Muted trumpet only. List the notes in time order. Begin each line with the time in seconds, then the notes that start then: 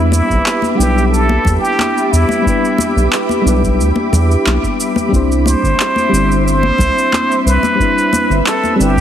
0.11 E4
0.78 G4
1.11 A4
1.61 G4
2.12 E4
5.47 C5
6.46 C5
7.47 B4
8.47 A4
8.80 G4